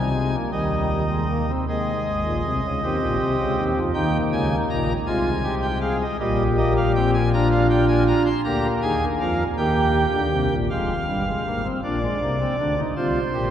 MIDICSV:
0, 0, Header, 1, 2, 480
1, 0, Start_track
1, 0, Key_signature, -4, "major"
1, 0, Tempo, 765306
1, 1052, Time_signature, 6, 3, 24, 8
1, 2002, Tempo, 750939
1, 8594, End_track
2, 0, Start_track
2, 0, Title_t, "Pipe organ"
2, 0, Program_c, 0, 19
2, 0, Note_on_c, 0, 36, 58
2, 0, Note_on_c, 0, 48, 63
2, 0, Note_on_c, 0, 55, 57
2, 0, Note_on_c, 0, 63, 59
2, 0, Note_on_c, 0, 80, 67
2, 67, Note_off_c, 0, 55, 0
2, 88, Note_on_c, 0, 56, 46
2, 191, Note_off_c, 0, 56, 0
2, 212, Note_on_c, 0, 58, 54
2, 223, Note_off_c, 0, 36, 0
2, 223, Note_off_c, 0, 48, 0
2, 223, Note_off_c, 0, 63, 0
2, 224, Note_off_c, 0, 80, 0
2, 314, Note_off_c, 0, 58, 0
2, 323, Note_on_c, 0, 51, 54
2, 323, Note_on_c, 0, 55, 54
2, 324, Note_on_c, 0, 39, 52
2, 324, Note_on_c, 0, 75, 55
2, 327, Note_on_c, 0, 63, 55
2, 636, Note_off_c, 0, 55, 0
2, 690, Note_on_c, 0, 56, 47
2, 794, Note_off_c, 0, 56, 0
2, 810, Note_on_c, 0, 58, 56
2, 914, Note_off_c, 0, 58, 0
2, 932, Note_on_c, 0, 60, 44
2, 948, Note_off_c, 0, 51, 0
2, 949, Note_off_c, 0, 39, 0
2, 949, Note_off_c, 0, 75, 0
2, 950, Note_off_c, 0, 63, 0
2, 1035, Note_off_c, 0, 60, 0
2, 1053, Note_on_c, 0, 51, 57
2, 1055, Note_on_c, 0, 39, 54
2, 1055, Note_on_c, 0, 56, 60
2, 1056, Note_on_c, 0, 75, 55
2, 1057, Note_on_c, 0, 68, 59
2, 1201, Note_off_c, 0, 51, 0
2, 1202, Note_off_c, 0, 39, 0
2, 1292, Note_on_c, 0, 32, 64
2, 1293, Note_on_c, 0, 44, 59
2, 1394, Note_off_c, 0, 32, 0
2, 1394, Note_off_c, 0, 44, 0
2, 1411, Note_on_c, 0, 34, 62
2, 1412, Note_on_c, 0, 46, 70
2, 1513, Note_off_c, 0, 34, 0
2, 1513, Note_off_c, 0, 46, 0
2, 1532, Note_on_c, 0, 36, 65
2, 1535, Note_on_c, 0, 48, 55
2, 1633, Note_off_c, 0, 36, 0
2, 1634, Note_off_c, 0, 48, 0
2, 1655, Note_on_c, 0, 37, 67
2, 1658, Note_on_c, 0, 49, 66
2, 1668, Note_off_c, 0, 56, 0
2, 1669, Note_off_c, 0, 68, 0
2, 1754, Note_off_c, 0, 37, 0
2, 1756, Note_off_c, 0, 49, 0
2, 1774, Note_on_c, 0, 39, 67
2, 1774, Note_on_c, 0, 67, 54
2, 1776, Note_on_c, 0, 51, 62
2, 1777, Note_on_c, 0, 60, 61
2, 1873, Note_off_c, 0, 39, 0
2, 1874, Note_off_c, 0, 51, 0
2, 1885, Note_on_c, 0, 46, 65
2, 1887, Note_on_c, 0, 34, 63
2, 1987, Note_off_c, 0, 46, 0
2, 1988, Note_off_c, 0, 34, 0
2, 2008, Note_on_c, 0, 36, 65
2, 2010, Note_on_c, 0, 48, 72
2, 2110, Note_off_c, 0, 36, 0
2, 2111, Note_off_c, 0, 48, 0
2, 2124, Note_on_c, 0, 49, 61
2, 2125, Note_on_c, 0, 37, 68
2, 2227, Note_off_c, 0, 49, 0
2, 2228, Note_off_c, 0, 37, 0
2, 2241, Note_on_c, 0, 39, 77
2, 2245, Note_on_c, 0, 51, 69
2, 2284, Note_off_c, 0, 75, 0
2, 2346, Note_off_c, 0, 39, 0
2, 2348, Note_off_c, 0, 51, 0
2, 2361, Note_on_c, 0, 53, 67
2, 2362, Note_on_c, 0, 41, 69
2, 2388, Note_off_c, 0, 67, 0
2, 2389, Note_off_c, 0, 60, 0
2, 2466, Note_off_c, 0, 41, 0
2, 2466, Note_off_c, 0, 53, 0
2, 2477, Note_on_c, 0, 63, 58
2, 2478, Note_on_c, 0, 79, 64
2, 2480, Note_on_c, 0, 39, 80
2, 2480, Note_on_c, 0, 51, 76
2, 2481, Note_on_c, 0, 58, 68
2, 2629, Note_off_c, 0, 79, 0
2, 2630, Note_off_c, 0, 39, 0
2, 2630, Note_off_c, 0, 51, 0
2, 2724, Note_on_c, 0, 49, 73
2, 2726, Note_on_c, 0, 80, 62
2, 2727, Note_on_c, 0, 37, 70
2, 2873, Note_off_c, 0, 49, 0
2, 2874, Note_off_c, 0, 37, 0
2, 2874, Note_off_c, 0, 80, 0
2, 2965, Note_on_c, 0, 46, 64
2, 2965, Note_on_c, 0, 82, 57
2, 2967, Note_on_c, 0, 34, 67
2, 3098, Note_off_c, 0, 63, 0
2, 3100, Note_off_c, 0, 58, 0
2, 3112, Note_off_c, 0, 46, 0
2, 3113, Note_off_c, 0, 82, 0
2, 3114, Note_off_c, 0, 34, 0
2, 3197, Note_on_c, 0, 48, 73
2, 3197, Note_on_c, 0, 65, 57
2, 3198, Note_on_c, 0, 56, 64
2, 3198, Note_on_c, 0, 80, 63
2, 3199, Note_on_c, 0, 36, 80
2, 3346, Note_off_c, 0, 65, 0
2, 3432, Note_on_c, 0, 67, 65
2, 3507, Note_off_c, 0, 80, 0
2, 3554, Note_on_c, 0, 79, 62
2, 3583, Note_off_c, 0, 67, 0
2, 3659, Note_off_c, 0, 79, 0
2, 3673, Note_on_c, 0, 77, 67
2, 3676, Note_on_c, 0, 68, 67
2, 3778, Note_off_c, 0, 77, 0
2, 3803, Note_on_c, 0, 75, 60
2, 3815, Note_off_c, 0, 48, 0
2, 3816, Note_off_c, 0, 36, 0
2, 3816, Note_off_c, 0, 56, 0
2, 3825, Note_off_c, 0, 68, 0
2, 3904, Note_off_c, 0, 75, 0
2, 3920, Note_on_c, 0, 67, 64
2, 3922, Note_on_c, 0, 34, 73
2, 3922, Note_on_c, 0, 55, 75
2, 3924, Note_on_c, 0, 46, 73
2, 3924, Note_on_c, 0, 75, 58
2, 4070, Note_off_c, 0, 55, 0
2, 4071, Note_off_c, 0, 75, 0
2, 4159, Note_on_c, 0, 58, 68
2, 4163, Note_on_c, 0, 75, 80
2, 4264, Note_off_c, 0, 75, 0
2, 4286, Note_on_c, 0, 77, 84
2, 4307, Note_off_c, 0, 58, 0
2, 4385, Note_off_c, 0, 77, 0
2, 4402, Note_on_c, 0, 60, 64
2, 4405, Note_on_c, 0, 79, 75
2, 4504, Note_off_c, 0, 79, 0
2, 4523, Note_on_c, 0, 80, 86
2, 4535, Note_off_c, 0, 67, 0
2, 4548, Note_off_c, 0, 60, 0
2, 4622, Note_off_c, 0, 80, 0
2, 4648, Note_on_c, 0, 62, 75
2, 4649, Note_on_c, 0, 65, 70
2, 4650, Note_on_c, 0, 82, 84
2, 4745, Note_off_c, 0, 82, 0
2, 4766, Note_on_c, 0, 77, 78
2, 4862, Note_off_c, 0, 77, 0
2, 4880, Note_on_c, 0, 79, 83
2, 4979, Note_off_c, 0, 79, 0
2, 4998, Note_on_c, 0, 80, 72
2, 5097, Note_off_c, 0, 80, 0
2, 5122, Note_on_c, 0, 82, 87
2, 5151, Note_off_c, 0, 34, 0
2, 5152, Note_off_c, 0, 46, 0
2, 5220, Note_off_c, 0, 82, 0
2, 5238, Note_on_c, 0, 84, 79
2, 5258, Note_off_c, 0, 62, 0
2, 5258, Note_off_c, 0, 65, 0
2, 5337, Note_off_c, 0, 84, 0
2, 5358, Note_on_c, 0, 67, 70
2, 5359, Note_on_c, 0, 82, 77
2, 5360, Note_on_c, 0, 38, 68
2, 5361, Note_on_c, 0, 58, 73
2, 5362, Note_on_c, 0, 50, 66
2, 5504, Note_off_c, 0, 67, 0
2, 5505, Note_off_c, 0, 82, 0
2, 5506, Note_off_c, 0, 38, 0
2, 5507, Note_off_c, 0, 50, 0
2, 5598, Note_on_c, 0, 51, 66
2, 5598, Note_on_c, 0, 68, 68
2, 5598, Note_on_c, 0, 80, 86
2, 5599, Note_on_c, 0, 39, 67
2, 5745, Note_off_c, 0, 51, 0
2, 5745, Note_off_c, 0, 68, 0
2, 5745, Note_off_c, 0, 80, 0
2, 5746, Note_off_c, 0, 39, 0
2, 5838, Note_on_c, 0, 41, 60
2, 5838, Note_on_c, 0, 53, 57
2, 5842, Note_on_c, 0, 77, 64
2, 5843, Note_on_c, 0, 70, 60
2, 5978, Note_off_c, 0, 58, 0
2, 5986, Note_off_c, 0, 41, 0
2, 5986, Note_off_c, 0, 53, 0
2, 5989, Note_off_c, 0, 70, 0
2, 5989, Note_off_c, 0, 77, 0
2, 6076, Note_on_c, 0, 39, 64
2, 6079, Note_on_c, 0, 51, 66
2, 6079, Note_on_c, 0, 58, 65
2, 6080, Note_on_c, 0, 67, 55
2, 6080, Note_on_c, 0, 79, 77
2, 6386, Note_off_c, 0, 39, 0
2, 6388, Note_off_c, 0, 51, 0
2, 6432, Note_on_c, 0, 50, 56
2, 6433, Note_on_c, 0, 38, 53
2, 6537, Note_off_c, 0, 50, 0
2, 6538, Note_off_c, 0, 38, 0
2, 6551, Note_on_c, 0, 36, 52
2, 6552, Note_on_c, 0, 48, 53
2, 6657, Note_off_c, 0, 36, 0
2, 6658, Note_off_c, 0, 48, 0
2, 6674, Note_on_c, 0, 34, 52
2, 6676, Note_on_c, 0, 46, 57
2, 6699, Note_off_c, 0, 58, 0
2, 6700, Note_off_c, 0, 67, 0
2, 6700, Note_off_c, 0, 79, 0
2, 6779, Note_off_c, 0, 34, 0
2, 6780, Note_off_c, 0, 46, 0
2, 6799, Note_on_c, 0, 77, 61
2, 6800, Note_on_c, 0, 29, 51
2, 6801, Note_on_c, 0, 41, 52
2, 6802, Note_on_c, 0, 56, 68
2, 6948, Note_off_c, 0, 29, 0
2, 6950, Note_off_c, 0, 41, 0
2, 6950, Note_off_c, 0, 56, 0
2, 7040, Note_on_c, 0, 55, 63
2, 7042, Note_on_c, 0, 31, 53
2, 7043, Note_on_c, 0, 43, 50
2, 7143, Note_off_c, 0, 55, 0
2, 7165, Note_on_c, 0, 56, 60
2, 7191, Note_off_c, 0, 31, 0
2, 7191, Note_off_c, 0, 43, 0
2, 7266, Note_off_c, 0, 56, 0
2, 7285, Note_on_c, 0, 58, 56
2, 7287, Note_on_c, 0, 44, 48
2, 7289, Note_on_c, 0, 32, 54
2, 7387, Note_off_c, 0, 58, 0
2, 7404, Note_on_c, 0, 60, 63
2, 7421, Note_off_c, 0, 77, 0
2, 7435, Note_off_c, 0, 44, 0
2, 7436, Note_off_c, 0, 32, 0
2, 7507, Note_off_c, 0, 60, 0
2, 7522, Note_on_c, 0, 62, 63
2, 7524, Note_on_c, 0, 34, 61
2, 7524, Note_on_c, 0, 46, 56
2, 7525, Note_on_c, 0, 74, 52
2, 7626, Note_off_c, 0, 62, 0
2, 7640, Note_on_c, 0, 56, 66
2, 7673, Note_off_c, 0, 34, 0
2, 7673, Note_off_c, 0, 46, 0
2, 7745, Note_off_c, 0, 56, 0
2, 7768, Note_on_c, 0, 48, 53
2, 7770, Note_on_c, 0, 58, 61
2, 7771, Note_on_c, 0, 36, 53
2, 7871, Note_off_c, 0, 58, 0
2, 7886, Note_on_c, 0, 60, 58
2, 7915, Note_off_c, 0, 48, 0
2, 7917, Note_off_c, 0, 36, 0
2, 7988, Note_off_c, 0, 60, 0
2, 8007, Note_on_c, 0, 62, 63
2, 8009, Note_on_c, 0, 38, 59
2, 8009, Note_on_c, 0, 50, 50
2, 8109, Note_off_c, 0, 62, 0
2, 8133, Note_on_c, 0, 63, 61
2, 8144, Note_off_c, 0, 74, 0
2, 8156, Note_off_c, 0, 38, 0
2, 8156, Note_off_c, 0, 50, 0
2, 8232, Note_off_c, 0, 63, 0
2, 8246, Note_on_c, 0, 65, 62
2, 8246, Note_on_c, 0, 72, 60
2, 8248, Note_on_c, 0, 48, 68
2, 8249, Note_on_c, 0, 36, 63
2, 8395, Note_off_c, 0, 65, 0
2, 8396, Note_off_c, 0, 48, 0
2, 8397, Note_off_c, 0, 36, 0
2, 8482, Note_on_c, 0, 46, 60
2, 8483, Note_on_c, 0, 34, 69
2, 8485, Note_on_c, 0, 67, 58
2, 8587, Note_off_c, 0, 46, 0
2, 8588, Note_off_c, 0, 34, 0
2, 8594, Note_off_c, 0, 67, 0
2, 8594, Note_off_c, 0, 72, 0
2, 8594, End_track
0, 0, End_of_file